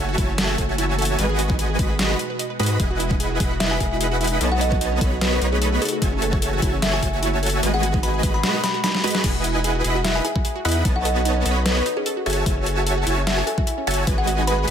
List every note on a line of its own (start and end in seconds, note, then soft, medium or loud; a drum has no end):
0.00 0.16 F#1 loud
0.00 1.17 E3 medium
0.00 1.15 A3 medium
0.00 0.16 F#4 medium
0.00 1.17 F#4 medium
0.00 0.16 C#5 medium
0.00 0.16 E5 medium
0.00 0.16 G#5 medium
0.00 0.16 A5 medium
0.09 0.12 F#4 loud
0.18 0.56 F#1 loud
0.18 0.25 E4 loud
0.18 0.56 F#4 medium
0.18 0.56 C#5 medium
0.18 0.56 E5 medium
0.18 0.56 G#5 medium
0.18 0.56 A5 medium
0.18 kick loud
0.18 closed hi-hat medium
0.29 0.34 C#4 medium
0.38 0.45 A4 loud
0.38 snare loud
0.38 closed hi-hat medium
0.49 0.55 F#4 medium
0.58 1.17 F#1 loud
0.58 1.16 F#4 medium
0.58 0.68 A4 loud
0.58 1.16 C#5 medium
0.58 1.16 E5 medium
0.58 1.16 G#5 medium
0.58 1.16 A5 medium
0.58 kick medium
0.58 closed hi-hat medium
0.69 0.72 F#4 loud
0.78 0.85 E4 loud
0.78 closed hi-hat medium
0.89 0.95 C#4 medium
0.98 1.05 A4 loud
0.98 closed hi-hat soft
1.02 closed hi-hat medium
1.05 closed hi-hat medium
1.09 1.15 F#4 medium
1.19 1.77 G#1 medium
1.19 2.78 B2 medium
1.19 1.77 G#3 medium
1.19 4.38 G#3 medium
1.19 1.77 F#4 medium
1.19 2.78 F#4 medium
1.19 1.29 B4 loud
1.19 1.77 B4 medium
1.19 1.77 D#5 medium
1.19 1.77 G#5 medium
1.19 closed hi-hat medium
1.29 1.33 G#4 loud
1.38 1.45 F#4 loud
1.38 closed hi-hat medium
1.50 1.55 D#4 medium
1.50 kick loud
1.59 1.65 B4 loud
1.59 closed hi-hat medium
1.70 1.75 G#4 medium
1.79 2.15 G#1 loud
1.79 2.17 G#3 medium
1.79 2.17 F#4 medium
1.79 1.89 B4 loud
1.79 2.17 B4 medium
1.79 2.17 D#5 medium
1.79 2.17 B5 medium
1.79 kick loud
1.79 closed hi-hat medium
1.90 1.93 G#4 loud
1.99 2.06 F#4 loud
1.99 snare loud
1.99 closed hi-hat medium
2.10 2.16 D#4 medium
2.19 2.26 B4 medium
2.19 closed hi-hat medium
2.30 2.33 B4 medium
2.39 2.46 D#5 medium
2.39 closed hi-hat medium
2.50 2.54 B4 medium
2.59 2.78 G#2 medium
2.59 2.77 G#3 medium
2.59 2.77 F#4 medium
2.59 2.77 B4 medium
2.59 2.66 D#5 medium
2.59 2.77 D#5 medium
2.59 2.77 B5 medium
2.59 closed hi-hat soft
2.63 closed hi-hat medium
2.66 2.76 B4 medium
2.66 closed hi-hat medium
2.80 3.38 E1 loud
2.80 3.38 E4 medium
2.80 4.39 F#4 medium
2.80 2.90 G#4 loud
2.80 3.38 B4 medium
2.80 3.38 D#5 medium
2.80 3.38 F#5 medium
2.80 3.38 G#5 medium
2.80 kick loud
2.80 closed hi-hat medium
2.90 2.94 F#4 loud
3.00 3.06 E4 loud
3.00 closed hi-hat medium
3.11 3.16 D#4 medium
3.11 kick loud
3.20 3.27 G#4 loud
3.20 closed hi-hat medium
3.31 3.36 F#4 medium
3.40 3.79 E1 loud
3.40 3.78 E4 medium
3.40 3.50 G#4 loud
3.40 3.78 B4 medium
3.40 3.78 D#5 medium
3.40 3.78 F#5 medium
3.40 3.78 B5 medium
3.40 kick loud
3.40 closed hi-hat medium
3.51 3.54 F#4 loud
3.60 3.67 E4 loud
3.60 3.69 E5 medium
3.60 snare loud
3.60 closed hi-hat medium
3.71 3.77 D#4 medium
3.71 3.78 G#5 medium
3.80 4.39 E1 medium
3.80 4.39 E4 medium
3.80 3.87 G#4 loud
3.80 4.39 B4 medium
3.80 4.39 D#5 medium
3.80 4.39 F#5 medium
3.80 4.37 G#5 medium
3.80 4.39 B5 medium
3.80 kick medium
3.80 closed hi-hat medium
3.91 3.97 F#4 medium
4.00 4.10 G#4 loud
4.00 closed hi-hat medium
4.11 4.15 F#4 loud
4.21 4.27 E4 loud
4.21 closed hi-hat soft
4.24 closed hi-hat medium
4.27 closed hi-hat medium
4.32 4.37 D#4 medium
4.41 4.99 B1 loud
4.41 5.80 C#3 medium
4.41 7.60 A3 medium
4.41 4.99 B3 medium
4.41 5.80 D#4 medium
4.41 4.47 A4 loud
4.41 4.99 B4 medium
4.41 4.99 C#5 medium
4.41 4.99 D#5 medium
4.41 4.99 A5 medium
4.41 closed hi-hat medium
4.52 4.57 F#4 medium
4.52 4.59 F#5 medium
4.61 4.71 A4 loud
4.61 4.76 D#5 medium
4.61 closed hi-hat medium
4.72 4.75 F#4 loud
4.72 kick loud
4.81 4.88 D#4 loud
4.81 closed hi-hat medium
4.92 4.98 C#4 medium
5.01 5.40 B1 loud
5.01 5.39 B3 medium
5.01 5.08 A4 loud
5.01 5.39 B4 medium
5.01 5.39 C#5 medium
5.01 5.39 D#5 medium
5.01 5.39 B5 loud
5.01 kick loud
5.01 closed hi-hat medium
5.12 5.18 F#4 medium
5.21 5.31 A4 loud
5.21 5.28 B4 medium
5.21 snare loud
5.21 closed hi-hat medium
5.32 5.36 F#4 loud
5.32 5.38 B4 medium
5.41 5.79 B1 loud
5.41 5.81 B3 medium
5.41 5.48 D#4 loud
5.41 5.81 B4 medium
5.41 5.81 C#5 medium
5.41 5.81 D#5 medium
5.41 5.81 B5 medium
5.41 closed hi-hat medium
5.52 5.58 C#4 medium
5.52 5.67 G#4 medium
5.62 5.68 A4 loud
5.62 closed hi-hat medium
5.72 5.78 F#4 medium
5.82 7.61 E3 medium
5.82 9.21 F#4 medium
5.82 6.38 G#4 medium
5.82 5.92 A4 loud
5.82 closed hi-hat soft
5.85 closed hi-hat medium
5.89 5.96 F#4 loud
5.89 closed hi-hat medium
6.02 6.60 F#1 loud
6.02 6.08 E4 loud
6.02 6.60 F#4 medium
6.02 6.60 C#5 medium
6.02 6.60 E5 medium
6.02 6.60 G#5 medium
6.02 6.60 A5 medium
6.02 kick loud
6.02 closed hi-hat medium
6.13 6.18 C#4 medium
6.22 6.29 A4 loud
6.22 closed hi-hat medium
6.33 6.38 F#4 medium
6.33 kick loud
6.42 6.52 A4 loud
6.42 closed hi-hat medium
6.53 6.56 F#4 loud
6.62 7.01 F#1 loud
6.62 6.69 E4 loud
6.62 7.00 F#4 medium
6.62 7.00 C#5 medium
6.62 7.00 E5 medium
6.62 7.00 G#5 medium
6.62 7.00 A5 medium
6.62 kick loud
6.62 closed hi-hat medium
6.73 6.79 C#4 medium
6.82 6.89 A4 loud
6.82 6.91 E5 medium
6.82 snare loud
6.82 closed hi-hat medium
6.93 6.99 F#4 medium
6.93 7.01 G#5 loud
7.02 7.61 F#1 loud
7.02 7.61 F#4 medium
7.02 7.12 A4 loud
7.02 7.61 C#5 medium
7.02 7.61 E5 medium
7.02 7.59 G#5 medium
7.02 7.61 G#5 medium
7.02 7.61 A5 medium
7.02 kick medium
7.02 closed hi-hat medium
7.13 7.17 F#4 loud
7.23 7.29 E4 loud
7.23 closed hi-hat medium
7.33 7.39 C#4 medium
7.43 7.49 A4 loud
7.43 closed hi-hat medium
7.46 closed hi-hat medium
7.50 closed hi-hat medium
7.54 7.59 F#4 medium
7.63 8.21 G#1 loud
7.63 9.22 B2 medium
7.63 9.22 G#3 medium
7.63 8.21 G#3 medium
7.63 8.21 F#4 medium
7.63 7.73 B4 loud
7.63 8.21 B4 medium
7.63 8.21 D#5 medium
7.63 8.21 G#5 medium
7.63 closed hi-hat medium
7.74 7.77 G#4 loud
7.74 7.81 F#5 medium
7.83 7.90 F#4 loud
7.83 closed hi-hat medium
7.94 8.00 D#4 medium
7.94 kick loud
8.03 8.10 B4 loud
8.03 8.18 B5 medium
8.03 closed hi-hat medium
8.14 8.20 G#4 medium
8.23 8.43 G#1 loud
8.23 8.61 G#3 medium
8.23 8.61 F#4 medium
8.23 8.33 B4 loud
8.23 8.61 B4 medium
8.23 8.61 D#5 medium
8.23 8.61 B5 loud
8.23 kick loud
8.23 closed hi-hat medium
8.34 8.37 G#4 loud
8.34 8.49 B5 medium
8.43 8.50 F#4 loud
8.43 snare loud
8.43 closed hi-hat medium
8.54 8.60 D#4 medium
8.64 8.73 F#5 medium
8.64 8.79 B5 loud
8.64 snare medium
8.64 closed hi-hat medium
8.74 8.78 F#4 loud
8.84 8.90 D#4 medium
8.84 9.24 B5 medium
8.84 snare medium
8.84 closed hi-hat medium
8.95 9.03 D#4 medium
8.95 snare medium
9.04 9.22 G#3 medium
9.04 9.22 F#4 medium
9.04 9.10 G#4 medium
9.04 9.22 B4 medium
9.04 9.22 D#5 medium
9.04 9.22 B5 loud
9.04 closed hi-hat medium
9.07 closed hi-hat medium
9.11 closed hi-hat medium
9.15 9.20 D#4 medium
9.15 snare medium
9.24 9.83 E1 loud
9.24 9.82 E4 medium
9.24 9.34 G#4 loud
9.24 9.82 B4 medium
9.24 9.82 D#5 medium
9.24 9.82 F#5 medium
9.24 9.82 G#5 medium
9.24 kick loud
9.24 closed hi-hat medium
9.24 crash loud
9.35 9.38 F#4 loud
9.44 9.51 E4 loud
9.44 closed hi-hat medium
9.55 9.61 D#4 medium
9.64 9.71 G#4 loud
9.64 closed hi-hat medium
9.75 9.81 F#4 medium
9.84 10.21 E1 loud
9.84 10.22 E4 medium
9.84 9.94 G#4 loud
9.84 10.22 B4 medium
9.84 10.22 D#5 medium
9.84 10.22 F#5 medium
9.84 10.22 B5 medium
9.84 closed hi-hat medium
9.95 9.99 F#4 loud
10.04 10.11 E4 loud
10.04 10.13 E5 medium
10.04 snare loud
10.04 closed hi-hat medium
10.15 10.21 D#4 medium
10.15 10.23 G#5 medium
10.25 10.31 G#4 loud
10.25 10.81 G#5 medium
10.25 closed hi-hat medium
10.36 10.41 F#4 medium
10.36 kick loud
10.45 10.55 G#4 loud
10.45 closed hi-hat medium
10.56 10.59 F#4 loud
10.65 10.83 E2 loud
10.65 10.72 E4 loud
10.65 10.83 E4 medium
10.65 10.83 B4 medium
10.65 10.83 D#5 medium
10.65 10.83 F#5 medium
10.65 10.83 B5 loud
10.65 closed hi-hat medium
10.69 closed hi-hat medium
10.72 closed hi-hat medium
10.76 10.81 D#4 medium
10.85 11.44 B1 medium
10.85 11.43 B3 medium
10.85 10.92 A4 loud
10.85 11.43 B4 medium
10.85 11.43 C#5 medium
10.85 11.43 D#5 medium
10.85 11.43 A5 medium
10.85 kick loud
10.85 closed hi-hat medium
10.96 11.02 F#4 medium
10.96 11.03 F#5 medium
11.05 11.15 A4 loud
11.05 11.20 D#5 medium
11.05 closed hi-hat medium
11.16 11.19 F#4 loud
11.25 11.32 D#4 loud
11.25 closed hi-hat medium
11.36 11.42 C#4 medium
11.45 11.82 B1 loud
11.45 11.84 B3 medium
11.45 11.52 A4 loud
11.45 11.84 B4 medium
11.45 11.84 C#5 medium
11.45 11.84 D#5 medium
11.45 11.84 B5 medium
11.45 closed hi-hat medium
11.56 11.62 F#4 medium
11.66 11.76 A4 loud
11.66 11.73 B4 medium
11.66 snare loud
11.66 closed hi-hat medium
11.77 11.80 F#4 loud
11.77 11.82 B4 medium
11.86 11.92 D#4 loud
11.86 closed hi-hat medium
11.97 12.02 C#4 medium
11.97 12.11 G#4 medium
12.06 12.13 A4 loud
12.06 closed hi-hat medium
12.17 12.22 F#4 medium
12.26 12.44 F#1 loud
12.26 12.44 F#4 medium
12.26 12.83 G#4 medium
12.26 12.36 A4 loud
12.26 12.44 C#5 medium
12.26 12.44 E5 medium
12.26 12.44 G#5 medium
12.26 12.44 A5 medium
12.26 closed hi-hat soft
12.30 closed hi-hat medium
12.33 closed hi-hat medium
12.37 12.40 F#4 loud
12.46 13.05 F#1 loud
12.46 12.53 E4 loud
12.46 13.04 F#4 medium
12.46 13.04 C#5 medium
12.46 13.04 E5 medium
12.46 13.04 G#5 medium
12.46 13.04 A5 medium
12.46 kick loud
12.46 closed hi-hat medium
12.57 12.63 C#4 medium
12.66 12.73 A4 loud
12.66 closed hi-hat medium
12.77 12.83 F#4 medium
12.87 12.96 A4 loud
12.87 closed hi-hat medium
12.97 13.01 F#4 loud
13.07 13.43 F#1 loud
13.07 13.13 E4 loud
13.07 13.45 F#4 medium
13.07 13.45 C#5 medium
13.07 13.45 E5 medium
13.07 13.45 G#5 medium
13.07 13.45 A5 medium
13.07 closed hi-hat medium
13.18 13.23 C#4 medium
13.27 13.33 A4 loud
13.27 13.36 E5 medium
13.27 snare loud
13.27 closed hi-hat medium
13.38 13.43 F#4 medium
13.38 13.45 G#5 medium
13.47 13.57 A4 loud
13.47 14.04 G#5 loud
13.47 closed hi-hat medium
13.58 13.61 F#4 loud
13.58 kick loud
13.67 13.74 E4 loud
13.67 closed hi-hat medium
13.78 13.83 C#4 medium
13.87 14.05 F#1 medium
13.87 14.05 F#4 medium
13.87 13.94 A4 loud
13.87 14.05 C#5 medium
13.87 14.05 E5 medium
13.87 14.05 G#5 medium
13.87 14.05 A5 loud
13.87 closed hi-hat soft
13.91 closed hi-hat medium
13.94 closed hi-hat medium
13.98 14.04 F#4 medium
14.07 14.66 G#1 loud
14.07 14.65 G#3 medium
14.07 14.65 F#4 medium
14.07 14.65 B4 medium
14.07 14.17 B4 loud
14.07 14.65 D#5 medium
14.07 14.65 G#5 medium
14.07 kick loud
14.07 closed hi-hat medium
14.18 14.21 G#4 loud
14.18 14.25 F#5 medium
14.27 14.34 F#4 loud
14.27 closed hi-hat medium
14.38 14.44 D#4 medium
14.47 14.54 B4 loud
14.47 14.63 B5 medium
14.47 closed hi-hat medium
14.58 14.64 G#4 medium